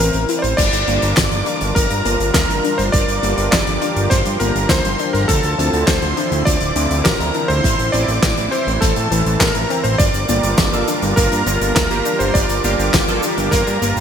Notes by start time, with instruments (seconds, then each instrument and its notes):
Already playing: analog synth pad E3 C4 E4, electric grand piano C5
0.00 analog synth bass A1, synth arpeggio sound E3, electric grand piano A#4, closed hi-hat
0.13 analog synth bass A1, closed hi-hat
0.29 synth arpeggio sound E4, closed hi-hat
0.39 electric grand piano C5 D5
0.44 analog synth bass A1, closed hi-hat
0.57 analog synth bass G1, synth arpeggio sound F3, analog synth pad G3 D4 F4 A#4, electric grand piano D5, string machine D6, kick, closed hi-hat, crash
0.73 analog synth bass G1, closed hi-hat
0.87 analog synth bass G1, synth arpeggio sound A#3, closed hi-hat
1.02 analog synth bass G1, closed hi-hat
1.17 analog synth bass G1, synth arpeggio sound F3, kick, snare, clap, closed hi-hat
1.32 analog synth bass G1, closed hi-hat
1.46 synth arpeggio sound D4, closed hi-hat
1.61 analog synth bass G1, closed hi-hat
1.75 analog synth bass G1, synth arpeggio sound F3, electric grand piano A#4, string machine A#5, kick, closed hi-hat
1.90 analog synth bass G2, closed hi-hat
2.05 analog synth bass G1, synth arpeggio sound A#3, closed hi-hat
2.20 analog synth bass G1, closed hi-hat
2.34 analog synth bass D2, synth arpeggio sound F3, electric grand piano A#4, string machine A#5, kick, snare, clap, closed hi-hat
2.49 analog synth bass G1, closed hi-hat
2.64 synth arpeggio sound D4, closed hi-hat
2.78 analog synth bass G1, electric grand piano C5, string machine C6, closed hi-hat
2.92 analog synth bass G1, synth arpeggio sound F3, analog synth pad G4, electric grand piano D5, string machine D6, kick, closed hi-hat
3.08 analog synth bass G1, closed hi-hat
3.23 analog synth bass G1, synth arpeggio sound A#3, closed hi-hat
3.38 analog synth bass G1, closed hi-hat
3.51 analog synth bass G1, synth arpeggio sound F3, electric grand piano D5, string machine D6, kick, snare, clap, closed hi-hat
3.67 analog synth bass G1, closed hi-hat
3.82 synth arpeggio sound D4, closed hi-hat
3.96 analog synth bass G1, closed hi-hat
4.10 analog synth bass G1, synth arpeggio sound F3, electric grand piano C5, string machine C6, kick, snare, closed hi-hat
4.25 analog synth bass G2, closed hi-hat
4.40 analog synth bass G1, synth arpeggio sound A#3, electric grand piano A#4, string machine A#5, closed hi-hat
4.56 analog synth bass G1, closed hi-hat
4.68 analog synth bass D2, synth arpeggio sound F3, electric grand piano C5, string machine C6, kick, snare, clap, closed hi-hat
4.85 analog synth bass G1, closed hi-hat
4.99 synth arpeggio sound D4, closed hi-hat
5.13 analog synth bass G1, electric grand piano A#4, string machine A#5, closed hi-hat
5.28 analog synth bass D2, analog synth pad D3 F3 C4 E4, synth arpeggio sound F3, electric grand piano A4, string machine A5, kick, closed hi-hat
5.43 analog synth bass D2, closed hi-hat
5.58 analog synth bass D2, synth arpeggio sound C4, closed hi-hat
5.73 analog synth bass D2, closed hi-hat
5.87 analog synth bass D2, synth arpeggio sound F3, electric grand piano C5, string machine C6, kick, snare, clap, closed hi-hat
6.02 analog synth bass D2, closed hi-hat
6.17 synth arpeggio sound D4, closed hi-hat
6.32 analog synth bass D2, closed hi-hat
6.45 analog synth bass D2, synth arpeggio sound F3, electric grand piano D5, string machine D6, kick, closed hi-hat
6.61 analog synth bass D1, closed hi-hat
6.76 analog synth bass D2, synth arpeggio sound C4, closed hi-hat
6.91 analog synth bass D2, closed hi-hat
7.04 analog synth bass A1, synth arpeggio sound F3, electric grand piano A#4, string machine A#5, kick, snare, clap, closed hi-hat
7.20 analog synth bass D2, closed hi-hat
7.34 synth arpeggio sound D4, closed hi-hat
7.48 analog synth bass D2, electric grand piano C5, string machine C6, closed hi-hat
7.64 analog synth bass A1, analog synth pad E3, synth arpeggio sound E3, kick, closed hi-hat
7.79 analog synth bass A1, closed hi-hat
7.92 analog synth bass A1, synth arpeggio sound C4, electric grand piano D5, string machine D6, closed hi-hat
8.08 analog synth bass A1, closed hi-hat
8.23 analog synth bass A1, synth arpeggio sound E3, kick, snare, clap, closed hi-hat
8.37 analog synth bass A1, closed hi-hat
8.51 synth arpeggio sound E4, electric grand piano C5, string machine C6, closed hi-hat
8.67 analog synth bass A1, closed hi-hat
8.80 analog synth bass A1, synth arpeggio sound E3, electric grand piano A4, string machine A5, kick, snare, closed hi-hat
8.96 analog synth bass A2, closed hi-hat
9.11 analog synth bass A1, synth arpeggio sound E3, closed hi-hat
9.26 analog synth bass A1, closed hi-hat
9.39 analog synth bass A1, synth arpeggio sound E3, electric grand piano A#4, string machine A#5, kick, snare, clap, closed hi-hat
9.55 analog synth bass A1, closed hi-hat
9.70 synth arpeggio sound C4, closed hi-hat
9.83 analog synth bass A1, electric grand piano C5, string machine C6, closed hi-hat
9.98 analog synth bass G1, synth arpeggio sound F3, analog synth pad G3 D4 F4 A#4, electric grand piano D5, string machine D6, kick, closed hi-hat, shaker
10.14 analog synth bass G1, closed hi-hat, shaker
10.29 analog synth bass G1, analog polysynth A#3 F4 G4, synth arpeggio sound A#3, closed hi-hat, shaker
10.43 analog synth bass G1, closed hi-hat, shaker
10.58 analog synth bass G1, synth arpeggio sound F3, kick, snare, clap, closed hi-hat, shaker
10.73 analog synth bass G1, analog polysynth A#3 F4 A4, closed hi-hat, shaker
10.88 synth arpeggio sound D4, closed hi-hat, shaker
11.02 analog synth bass G1, closed hi-hat, shaker
11.16 analog synth bass G1, synth arpeggio sound F3, analog polysynth A#3 F4 A#4, electric grand piano A#4, string machine A#5, kick, closed hi-hat, shaker
11.32 analog synth bass G2, closed hi-hat, shaker
11.46 analog synth bass G1, analog polysynth A#3 F4 A#4, synth arpeggio sound A#3, closed hi-hat, shaker
11.61 analog synth bass G1, closed hi-hat, shaker
11.75 analog synth bass D2, synth arpeggio sound F3, electric grand piano A#4, string machine A#5, kick, snare, clap, closed hi-hat, shaker
11.91 analog synth bass G1, analog polysynth A#3 F4 G4, closed hi-hat
12.05 synth arpeggio sound D4, closed hi-hat, shaker
12.19 analog synth bass G1, electric grand piano C5, string machine C6, closed hi-hat, shaker
12.34 analog synth bass G1, synth arpeggio sound F3, analog synth pad G4, electric grand piano D5, string machine D6, kick, closed hi-hat, shaker
12.49 analog synth bass G1, closed hi-hat, shaker
12.64 analog synth bass G1, analog polysynth A#3 F4 G4, synth arpeggio sound A#3, closed hi-hat, shaker
12.79 analog synth bass G1, closed hi-hat, shaker
12.94 analog synth bass G1, synth arpeggio sound F3, kick, snare, clap, closed hi-hat, shaker
13.08 analog synth bass G1, analog polysynth A#3 F4 A4, closed hi-hat, shaker
13.23 synth arpeggio sound D4, closed hi-hat, shaker
13.38 analog synth bass G1, closed hi-hat, shaker
13.51 analog synth bass G1, synth arpeggio sound F3, analog polysynth A#3 F4 A#4, electric grand piano A#4, string machine A#5, kick, snare, closed hi-hat, shaker
13.67 analog synth bass G2, closed hi-hat, shaker
13.82 analog synth bass G1, analog polysynth A#3 F4 A#4, synth arpeggio sound A#3, closed hi-hat, shaker
13.97 analog synth bass G1, shaker